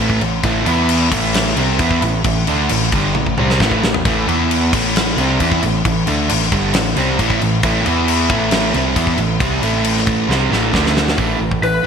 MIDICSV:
0, 0, Header, 1, 5, 480
1, 0, Start_track
1, 0, Tempo, 450789
1, 471, Time_signature, 4, 2, 24, 8
1, 6708, Tempo, 444444
1, 12718, End_track
2, 0, Start_track
2, 0, Title_t, "Lead electric guitar"
2, 0, Program_c, 0, 29
2, 12471, Note_on_c, 0, 71, 86
2, 12718, Note_off_c, 0, 71, 0
2, 12718, End_track
3, 0, Start_track
3, 0, Title_t, "Distorted electric guitar"
3, 0, Program_c, 1, 30
3, 0, Note_on_c, 1, 45, 89
3, 0, Note_on_c, 1, 52, 84
3, 0, Note_on_c, 1, 57, 95
3, 218, Note_off_c, 1, 45, 0
3, 221, Note_off_c, 1, 52, 0
3, 225, Note_off_c, 1, 57, 0
3, 236, Note_on_c, 1, 45, 68
3, 237, Note_on_c, 1, 52, 81
3, 425, Note_off_c, 1, 45, 0
3, 426, Note_off_c, 1, 52, 0
3, 470, Note_on_c, 1, 45, 83
3, 476, Note_on_c, 1, 52, 97
3, 483, Note_on_c, 1, 57, 93
3, 697, Note_off_c, 1, 52, 0
3, 704, Note_off_c, 1, 45, 0
3, 709, Note_on_c, 1, 52, 87
3, 710, Note_off_c, 1, 57, 0
3, 713, Note_on_c, 1, 59, 92
3, 725, Note_on_c, 1, 64, 106
3, 1175, Note_off_c, 1, 52, 0
3, 1180, Note_on_c, 1, 45, 86
3, 1184, Note_off_c, 1, 59, 0
3, 1188, Note_on_c, 1, 52, 93
3, 1192, Note_off_c, 1, 64, 0
3, 1196, Note_on_c, 1, 57, 103
3, 1661, Note_off_c, 1, 45, 0
3, 1665, Note_off_c, 1, 52, 0
3, 1669, Note_off_c, 1, 57, 0
3, 1676, Note_on_c, 1, 48, 103
3, 1680, Note_on_c, 1, 55, 88
3, 1687, Note_on_c, 1, 60, 97
3, 1909, Note_off_c, 1, 48, 0
3, 1911, Note_off_c, 1, 55, 0
3, 1915, Note_off_c, 1, 60, 0
3, 1915, Note_on_c, 1, 52, 76
3, 1922, Note_on_c, 1, 59, 98
3, 1927, Note_on_c, 1, 64, 103
3, 2149, Note_off_c, 1, 52, 0
3, 2152, Note_off_c, 1, 59, 0
3, 2155, Note_off_c, 1, 64, 0
3, 2157, Note_on_c, 1, 45, 79
3, 2163, Note_on_c, 1, 52, 80
3, 2349, Note_off_c, 1, 45, 0
3, 2352, Note_off_c, 1, 52, 0
3, 2391, Note_on_c, 1, 45, 62
3, 2401, Note_on_c, 1, 52, 67
3, 2587, Note_off_c, 1, 45, 0
3, 2592, Note_off_c, 1, 52, 0
3, 2633, Note_on_c, 1, 50, 84
3, 2640, Note_on_c, 1, 57, 87
3, 2650, Note_on_c, 1, 62, 100
3, 2869, Note_off_c, 1, 50, 0
3, 2872, Note_off_c, 1, 57, 0
3, 2877, Note_off_c, 1, 62, 0
3, 2880, Note_on_c, 1, 45, 69
3, 2884, Note_on_c, 1, 52, 65
3, 3072, Note_off_c, 1, 45, 0
3, 3074, Note_off_c, 1, 52, 0
3, 3123, Note_on_c, 1, 43, 95
3, 3128, Note_on_c, 1, 50, 94
3, 3136, Note_on_c, 1, 55, 96
3, 3354, Note_off_c, 1, 43, 0
3, 3356, Note_off_c, 1, 50, 0
3, 3356, Note_off_c, 1, 55, 0
3, 3360, Note_on_c, 1, 52, 83
3, 3362, Note_on_c, 1, 45, 64
3, 3552, Note_off_c, 1, 52, 0
3, 3553, Note_off_c, 1, 45, 0
3, 3593, Note_on_c, 1, 48, 92
3, 3599, Note_on_c, 1, 55, 96
3, 3608, Note_on_c, 1, 60, 105
3, 3827, Note_off_c, 1, 48, 0
3, 3831, Note_on_c, 1, 45, 75
3, 3832, Note_off_c, 1, 55, 0
3, 3837, Note_off_c, 1, 60, 0
3, 3837, Note_on_c, 1, 52, 84
3, 3844, Note_on_c, 1, 57, 95
3, 4068, Note_off_c, 1, 45, 0
3, 4071, Note_off_c, 1, 52, 0
3, 4075, Note_off_c, 1, 57, 0
3, 4081, Note_on_c, 1, 45, 62
3, 4088, Note_on_c, 1, 52, 71
3, 4272, Note_off_c, 1, 45, 0
3, 4275, Note_off_c, 1, 52, 0
3, 4321, Note_on_c, 1, 45, 85
3, 4326, Note_on_c, 1, 52, 89
3, 4330, Note_on_c, 1, 57, 98
3, 4542, Note_off_c, 1, 52, 0
3, 4551, Note_off_c, 1, 45, 0
3, 4555, Note_on_c, 1, 52, 79
3, 4557, Note_off_c, 1, 57, 0
3, 4559, Note_on_c, 1, 59, 86
3, 4566, Note_on_c, 1, 64, 93
3, 5029, Note_off_c, 1, 52, 0
3, 5031, Note_off_c, 1, 59, 0
3, 5034, Note_off_c, 1, 64, 0
3, 5036, Note_on_c, 1, 45, 89
3, 5044, Note_on_c, 1, 52, 99
3, 5051, Note_on_c, 1, 57, 94
3, 5508, Note_off_c, 1, 45, 0
3, 5512, Note_off_c, 1, 52, 0
3, 5515, Note_off_c, 1, 57, 0
3, 5520, Note_on_c, 1, 48, 88
3, 5528, Note_on_c, 1, 55, 95
3, 5536, Note_on_c, 1, 60, 94
3, 5749, Note_off_c, 1, 48, 0
3, 5753, Note_off_c, 1, 55, 0
3, 5754, Note_on_c, 1, 52, 80
3, 5757, Note_off_c, 1, 60, 0
3, 5759, Note_on_c, 1, 59, 89
3, 5766, Note_on_c, 1, 64, 95
3, 5986, Note_off_c, 1, 52, 0
3, 5988, Note_off_c, 1, 59, 0
3, 5992, Note_off_c, 1, 64, 0
3, 5997, Note_on_c, 1, 45, 68
3, 5998, Note_on_c, 1, 52, 80
3, 6186, Note_off_c, 1, 45, 0
3, 6186, Note_off_c, 1, 52, 0
3, 6239, Note_on_c, 1, 45, 56
3, 6242, Note_on_c, 1, 52, 72
3, 6426, Note_off_c, 1, 45, 0
3, 6428, Note_off_c, 1, 52, 0
3, 6462, Note_on_c, 1, 50, 83
3, 6470, Note_on_c, 1, 57, 92
3, 6476, Note_on_c, 1, 62, 101
3, 6697, Note_off_c, 1, 50, 0
3, 6701, Note_off_c, 1, 57, 0
3, 6704, Note_off_c, 1, 62, 0
3, 6706, Note_on_c, 1, 45, 67
3, 6710, Note_on_c, 1, 52, 72
3, 6900, Note_off_c, 1, 45, 0
3, 6902, Note_off_c, 1, 52, 0
3, 6944, Note_on_c, 1, 43, 86
3, 6946, Note_on_c, 1, 50, 86
3, 6956, Note_on_c, 1, 55, 100
3, 7180, Note_off_c, 1, 43, 0
3, 7181, Note_off_c, 1, 50, 0
3, 7186, Note_off_c, 1, 55, 0
3, 7191, Note_on_c, 1, 45, 72
3, 7196, Note_on_c, 1, 52, 68
3, 7383, Note_off_c, 1, 45, 0
3, 7386, Note_off_c, 1, 52, 0
3, 7421, Note_on_c, 1, 48, 89
3, 7429, Note_on_c, 1, 55, 100
3, 7435, Note_on_c, 1, 60, 97
3, 7660, Note_off_c, 1, 48, 0
3, 7664, Note_off_c, 1, 55, 0
3, 7665, Note_on_c, 1, 45, 78
3, 7667, Note_off_c, 1, 60, 0
3, 7674, Note_on_c, 1, 52, 93
3, 7681, Note_on_c, 1, 57, 108
3, 7895, Note_off_c, 1, 52, 0
3, 7896, Note_off_c, 1, 45, 0
3, 7908, Note_on_c, 1, 52, 80
3, 7909, Note_on_c, 1, 45, 66
3, 7910, Note_off_c, 1, 57, 0
3, 8103, Note_off_c, 1, 45, 0
3, 8103, Note_off_c, 1, 52, 0
3, 8149, Note_on_c, 1, 45, 93
3, 8156, Note_on_c, 1, 52, 101
3, 8166, Note_on_c, 1, 57, 99
3, 8381, Note_off_c, 1, 52, 0
3, 8384, Note_off_c, 1, 45, 0
3, 8393, Note_off_c, 1, 57, 0
3, 8394, Note_on_c, 1, 52, 90
3, 8402, Note_on_c, 1, 59, 101
3, 8410, Note_on_c, 1, 64, 100
3, 8867, Note_off_c, 1, 52, 0
3, 8871, Note_off_c, 1, 59, 0
3, 8875, Note_off_c, 1, 64, 0
3, 8875, Note_on_c, 1, 45, 89
3, 8884, Note_on_c, 1, 52, 100
3, 8892, Note_on_c, 1, 57, 91
3, 9343, Note_off_c, 1, 45, 0
3, 9347, Note_on_c, 1, 48, 84
3, 9350, Note_off_c, 1, 52, 0
3, 9354, Note_on_c, 1, 55, 93
3, 9356, Note_off_c, 1, 57, 0
3, 9363, Note_on_c, 1, 60, 103
3, 9580, Note_off_c, 1, 48, 0
3, 9584, Note_on_c, 1, 52, 89
3, 9587, Note_off_c, 1, 55, 0
3, 9591, Note_off_c, 1, 60, 0
3, 9593, Note_on_c, 1, 59, 98
3, 9596, Note_on_c, 1, 64, 89
3, 9821, Note_off_c, 1, 52, 0
3, 9826, Note_off_c, 1, 59, 0
3, 9827, Note_off_c, 1, 64, 0
3, 9830, Note_on_c, 1, 45, 67
3, 9835, Note_on_c, 1, 52, 79
3, 10023, Note_off_c, 1, 45, 0
3, 10026, Note_off_c, 1, 52, 0
3, 10060, Note_on_c, 1, 48, 95
3, 10066, Note_on_c, 1, 55, 102
3, 10078, Note_on_c, 1, 60, 92
3, 10297, Note_off_c, 1, 48, 0
3, 10302, Note_off_c, 1, 55, 0
3, 10302, Note_on_c, 1, 45, 91
3, 10307, Note_on_c, 1, 52, 89
3, 10308, Note_off_c, 1, 60, 0
3, 10313, Note_on_c, 1, 57, 103
3, 11002, Note_off_c, 1, 45, 0
3, 11007, Note_on_c, 1, 48, 93
3, 11008, Note_off_c, 1, 52, 0
3, 11012, Note_on_c, 1, 55, 92
3, 11018, Note_off_c, 1, 57, 0
3, 11022, Note_on_c, 1, 60, 95
3, 11246, Note_off_c, 1, 48, 0
3, 11250, Note_on_c, 1, 45, 87
3, 11253, Note_off_c, 1, 55, 0
3, 11258, Note_off_c, 1, 60, 0
3, 11260, Note_on_c, 1, 52, 95
3, 11262, Note_on_c, 1, 57, 97
3, 11476, Note_off_c, 1, 57, 0
3, 11481, Note_off_c, 1, 45, 0
3, 11484, Note_off_c, 1, 52, 0
3, 11486, Note_on_c, 1, 50, 93
3, 11489, Note_on_c, 1, 57, 89
3, 11494, Note_on_c, 1, 62, 88
3, 11962, Note_off_c, 1, 50, 0
3, 11967, Note_on_c, 1, 45, 83
3, 11971, Note_off_c, 1, 57, 0
3, 11973, Note_off_c, 1, 62, 0
3, 11975, Note_on_c, 1, 52, 81
3, 11985, Note_on_c, 1, 57, 90
3, 12195, Note_off_c, 1, 45, 0
3, 12195, Note_off_c, 1, 52, 0
3, 12207, Note_on_c, 1, 45, 61
3, 12208, Note_on_c, 1, 52, 75
3, 12211, Note_off_c, 1, 57, 0
3, 12433, Note_off_c, 1, 45, 0
3, 12433, Note_off_c, 1, 52, 0
3, 12456, Note_on_c, 1, 45, 67
3, 12460, Note_on_c, 1, 52, 77
3, 12672, Note_off_c, 1, 45, 0
3, 12679, Note_off_c, 1, 52, 0
3, 12685, Note_on_c, 1, 45, 87
3, 12718, Note_off_c, 1, 45, 0
3, 12718, End_track
4, 0, Start_track
4, 0, Title_t, "Picked electric bass"
4, 0, Program_c, 2, 34
4, 0, Note_on_c, 2, 33, 93
4, 207, Note_off_c, 2, 33, 0
4, 221, Note_on_c, 2, 33, 80
4, 449, Note_off_c, 2, 33, 0
4, 467, Note_on_c, 2, 33, 96
4, 693, Note_off_c, 2, 33, 0
4, 711, Note_on_c, 2, 40, 97
4, 1159, Note_off_c, 2, 40, 0
4, 1194, Note_on_c, 2, 33, 105
4, 1642, Note_off_c, 2, 33, 0
4, 1669, Note_on_c, 2, 36, 97
4, 1896, Note_off_c, 2, 36, 0
4, 1914, Note_on_c, 2, 40, 95
4, 2139, Note_off_c, 2, 40, 0
4, 2149, Note_on_c, 2, 33, 73
4, 2377, Note_off_c, 2, 33, 0
4, 2389, Note_on_c, 2, 33, 80
4, 2617, Note_off_c, 2, 33, 0
4, 2639, Note_on_c, 2, 38, 86
4, 2862, Note_off_c, 2, 38, 0
4, 2879, Note_on_c, 2, 33, 82
4, 3102, Note_off_c, 2, 33, 0
4, 3108, Note_on_c, 2, 31, 93
4, 3337, Note_off_c, 2, 31, 0
4, 3365, Note_on_c, 2, 33, 73
4, 3586, Note_off_c, 2, 33, 0
4, 3609, Note_on_c, 2, 36, 96
4, 3828, Note_off_c, 2, 36, 0
4, 3835, Note_on_c, 2, 33, 92
4, 4060, Note_off_c, 2, 33, 0
4, 4084, Note_on_c, 2, 33, 67
4, 4305, Note_off_c, 2, 33, 0
4, 4316, Note_on_c, 2, 33, 86
4, 4540, Note_off_c, 2, 33, 0
4, 4562, Note_on_c, 2, 40, 85
4, 5006, Note_off_c, 2, 40, 0
4, 5040, Note_on_c, 2, 33, 90
4, 5484, Note_off_c, 2, 33, 0
4, 5507, Note_on_c, 2, 36, 92
4, 5733, Note_off_c, 2, 36, 0
4, 5757, Note_on_c, 2, 40, 93
4, 5978, Note_off_c, 2, 40, 0
4, 5994, Note_on_c, 2, 33, 76
4, 6215, Note_off_c, 2, 33, 0
4, 6230, Note_on_c, 2, 33, 82
4, 6452, Note_off_c, 2, 33, 0
4, 6474, Note_on_c, 2, 38, 84
4, 6694, Note_off_c, 2, 38, 0
4, 6717, Note_on_c, 2, 33, 82
4, 6937, Note_off_c, 2, 33, 0
4, 6947, Note_on_c, 2, 31, 94
4, 7173, Note_off_c, 2, 31, 0
4, 7187, Note_on_c, 2, 33, 78
4, 7413, Note_off_c, 2, 33, 0
4, 7427, Note_on_c, 2, 36, 93
4, 7653, Note_off_c, 2, 36, 0
4, 7672, Note_on_c, 2, 33, 97
4, 7896, Note_off_c, 2, 33, 0
4, 7917, Note_on_c, 2, 33, 78
4, 8139, Note_off_c, 2, 33, 0
4, 8144, Note_on_c, 2, 33, 97
4, 8372, Note_off_c, 2, 33, 0
4, 8394, Note_on_c, 2, 40, 90
4, 8840, Note_off_c, 2, 40, 0
4, 8870, Note_on_c, 2, 33, 96
4, 9318, Note_off_c, 2, 33, 0
4, 9347, Note_on_c, 2, 36, 97
4, 9573, Note_off_c, 2, 36, 0
4, 9584, Note_on_c, 2, 40, 96
4, 9804, Note_off_c, 2, 40, 0
4, 9810, Note_on_c, 2, 33, 72
4, 10044, Note_off_c, 2, 33, 0
4, 10060, Note_on_c, 2, 36, 89
4, 10289, Note_off_c, 2, 36, 0
4, 10299, Note_on_c, 2, 33, 94
4, 10981, Note_off_c, 2, 33, 0
4, 11016, Note_on_c, 2, 36, 85
4, 11245, Note_off_c, 2, 36, 0
4, 11258, Note_on_c, 2, 33, 93
4, 11486, Note_off_c, 2, 33, 0
4, 11500, Note_on_c, 2, 38, 93
4, 11949, Note_off_c, 2, 38, 0
4, 11982, Note_on_c, 2, 33, 81
4, 12153, Note_off_c, 2, 33, 0
4, 12215, Note_on_c, 2, 33, 81
4, 12388, Note_off_c, 2, 33, 0
4, 12449, Note_on_c, 2, 33, 86
4, 12624, Note_off_c, 2, 33, 0
4, 12718, End_track
5, 0, Start_track
5, 0, Title_t, "Drums"
5, 103, Note_on_c, 9, 36, 77
5, 210, Note_off_c, 9, 36, 0
5, 225, Note_on_c, 9, 49, 54
5, 331, Note_off_c, 9, 49, 0
5, 461, Note_on_c, 9, 49, 66
5, 464, Note_on_c, 9, 36, 96
5, 568, Note_off_c, 9, 49, 0
5, 571, Note_off_c, 9, 36, 0
5, 704, Note_on_c, 9, 49, 59
5, 811, Note_off_c, 9, 49, 0
5, 946, Note_on_c, 9, 49, 82
5, 1052, Note_off_c, 9, 49, 0
5, 1189, Note_on_c, 9, 36, 106
5, 1189, Note_on_c, 9, 49, 101
5, 1295, Note_off_c, 9, 36, 0
5, 1296, Note_off_c, 9, 49, 0
5, 1429, Note_on_c, 9, 49, 89
5, 1442, Note_on_c, 9, 38, 114
5, 1536, Note_off_c, 9, 49, 0
5, 1549, Note_off_c, 9, 38, 0
5, 1669, Note_on_c, 9, 49, 65
5, 1776, Note_off_c, 9, 49, 0
5, 1906, Note_on_c, 9, 49, 70
5, 1910, Note_on_c, 9, 36, 86
5, 2012, Note_off_c, 9, 49, 0
5, 2017, Note_off_c, 9, 36, 0
5, 2031, Note_on_c, 9, 36, 77
5, 2137, Note_off_c, 9, 36, 0
5, 2152, Note_on_c, 9, 49, 60
5, 2259, Note_off_c, 9, 49, 0
5, 2388, Note_on_c, 9, 49, 82
5, 2392, Note_on_c, 9, 36, 101
5, 2494, Note_off_c, 9, 49, 0
5, 2498, Note_off_c, 9, 36, 0
5, 2632, Note_on_c, 9, 49, 63
5, 2738, Note_off_c, 9, 49, 0
5, 2868, Note_on_c, 9, 49, 89
5, 2974, Note_off_c, 9, 49, 0
5, 3004, Note_on_c, 9, 38, 34
5, 3109, Note_on_c, 9, 49, 61
5, 3110, Note_off_c, 9, 38, 0
5, 3113, Note_on_c, 9, 36, 93
5, 3215, Note_off_c, 9, 49, 0
5, 3220, Note_off_c, 9, 36, 0
5, 3352, Note_on_c, 9, 48, 67
5, 3459, Note_off_c, 9, 48, 0
5, 3477, Note_on_c, 9, 36, 58
5, 3583, Note_off_c, 9, 36, 0
5, 3596, Note_on_c, 9, 47, 74
5, 3702, Note_off_c, 9, 47, 0
5, 3728, Note_on_c, 9, 38, 65
5, 3834, Note_off_c, 9, 38, 0
5, 3836, Note_on_c, 9, 36, 83
5, 3848, Note_on_c, 9, 38, 84
5, 3942, Note_off_c, 9, 36, 0
5, 3954, Note_on_c, 9, 36, 69
5, 3955, Note_off_c, 9, 38, 0
5, 4061, Note_off_c, 9, 36, 0
5, 4084, Note_on_c, 9, 38, 86
5, 4190, Note_off_c, 9, 38, 0
5, 4200, Note_on_c, 9, 43, 85
5, 4306, Note_off_c, 9, 43, 0
5, 4314, Note_on_c, 9, 49, 64
5, 4316, Note_on_c, 9, 36, 106
5, 4421, Note_off_c, 9, 49, 0
5, 4422, Note_off_c, 9, 36, 0
5, 4564, Note_on_c, 9, 49, 61
5, 4671, Note_off_c, 9, 49, 0
5, 4802, Note_on_c, 9, 49, 81
5, 4909, Note_off_c, 9, 49, 0
5, 5037, Note_on_c, 9, 36, 105
5, 5039, Note_on_c, 9, 49, 97
5, 5143, Note_off_c, 9, 36, 0
5, 5145, Note_off_c, 9, 49, 0
5, 5279, Note_on_c, 9, 49, 78
5, 5292, Note_on_c, 9, 38, 122
5, 5386, Note_off_c, 9, 49, 0
5, 5399, Note_off_c, 9, 38, 0
5, 5515, Note_on_c, 9, 49, 56
5, 5622, Note_off_c, 9, 49, 0
5, 5751, Note_on_c, 9, 49, 77
5, 5754, Note_on_c, 9, 36, 78
5, 5857, Note_off_c, 9, 49, 0
5, 5860, Note_off_c, 9, 36, 0
5, 5874, Note_on_c, 9, 36, 81
5, 5981, Note_off_c, 9, 36, 0
5, 5991, Note_on_c, 9, 49, 60
5, 6097, Note_off_c, 9, 49, 0
5, 6228, Note_on_c, 9, 49, 74
5, 6231, Note_on_c, 9, 36, 96
5, 6335, Note_off_c, 9, 49, 0
5, 6337, Note_off_c, 9, 36, 0
5, 6463, Note_on_c, 9, 49, 66
5, 6569, Note_off_c, 9, 49, 0
5, 6702, Note_on_c, 9, 49, 89
5, 6810, Note_off_c, 9, 49, 0
5, 6839, Note_on_c, 9, 38, 34
5, 6944, Note_on_c, 9, 49, 60
5, 6946, Note_on_c, 9, 36, 85
5, 6947, Note_off_c, 9, 38, 0
5, 7052, Note_off_c, 9, 49, 0
5, 7054, Note_off_c, 9, 36, 0
5, 7179, Note_on_c, 9, 49, 83
5, 7192, Note_on_c, 9, 38, 114
5, 7287, Note_off_c, 9, 49, 0
5, 7300, Note_off_c, 9, 38, 0
5, 7427, Note_on_c, 9, 49, 60
5, 7535, Note_off_c, 9, 49, 0
5, 7671, Note_on_c, 9, 36, 78
5, 7672, Note_on_c, 9, 49, 74
5, 7779, Note_off_c, 9, 36, 0
5, 7780, Note_off_c, 9, 49, 0
5, 7790, Note_on_c, 9, 36, 84
5, 7898, Note_off_c, 9, 36, 0
5, 7913, Note_on_c, 9, 49, 51
5, 8021, Note_off_c, 9, 49, 0
5, 8145, Note_on_c, 9, 49, 72
5, 8149, Note_on_c, 9, 36, 101
5, 8253, Note_off_c, 9, 49, 0
5, 8257, Note_off_c, 9, 36, 0
5, 8391, Note_on_c, 9, 49, 57
5, 8499, Note_off_c, 9, 49, 0
5, 8631, Note_on_c, 9, 49, 82
5, 8739, Note_off_c, 9, 49, 0
5, 8863, Note_on_c, 9, 49, 57
5, 8866, Note_on_c, 9, 36, 112
5, 8971, Note_off_c, 9, 49, 0
5, 8974, Note_off_c, 9, 36, 0
5, 9096, Note_on_c, 9, 49, 80
5, 9109, Note_on_c, 9, 38, 121
5, 9204, Note_off_c, 9, 49, 0
5, 9217, Note_off_c, 9, 38, 0
5, 9347, Note_on_c, 9, 49, 54
5, 9455, Note_off_c, 9, 49, 0
5, 9583, Note_on_c, 9, 36, 82
5, 9583, Note_on_c, 9, 49, 73
5, 9691, Note_off_c, 9, 36, 0
5, 9691, Note_off_c, 9, 49, 0
5, 9700, Note_on_c, 9, 36, 75
5, 9808, Note_off_c, 9, 36, 0
5, 9815, Note_on_c, 9, 49, 50
5, 9923, Note_off_c, 9, 49, 0
5, 10058, Note_on_c, 9, 49, 75
5, 10061, Note_on_c, 9, 36, 111
5, 10166, Note_off_c, 9, 49, 0
5, 10169, Note_off_c, 9, 36, 0
5, 10302, Note_on_c, 9, 49, 65
5, 10410, Note_off_c, 9, 49, 0
5, 10537, Note_on_c, 9, 49, 92
5, 10645, Note_off_c, 9, 49, 0
5, 10674, Note_on_c, 9, 38, 37
5, 10778, Note_on_c, 9, 49, 60
5, 10781, Note_on_c, 9, 36, 95
5, 10782, Note_off_c, 9, 38, 0
5, 10886, Note_off_c, 9, 49, 0
5, 10889, Note_off_c, 9, 36, 0
5, 11038, Note_on_c, 9, 38, 67
5, 11146, Note_off_c, 9, 38, 0
5, 11279, Note_on_c, 9, 38, 66
5, 11387, Note_off_c, 9, 38, 0
5, 11501, Note_on_c, 9, 36, 73
5, 11512, Note_on_c, 9, 38, 85
5, 11609, Note_off_c, 9, 36, 0
5, 11620, Note_off_c, 9, 38, 0
5, 11637, Note_on_c, 9, 38, 76
5, 11745, Note_off_c, 9, 38, 0
5, 11751, Note_on_c, 9, 38, 83
5, 11859, Note_off_c, 9, 38, 0
5, 11874, Note_on_c, 9, 38, 83
5, 11975, Note_on_c, 9, 46, 37
5, 11980, Note_on_c, 9, 36, 85
5, 11982, Note_off_c, 9, 38, 0
5, 12083, Note_off_c, 9, 46, 0
5, 12088, Note_off_c, 9, 36, 0
5, 12340, Note_on_c, 9, 36, 81
5, 12448, Note_off_c, 9, 36, 0
5, 12467, Note_on_c, 9, 46, 49
5, 12575, Note_off_c, 9, 46, 0
5, 12718, End_track
0, 0, End_of_file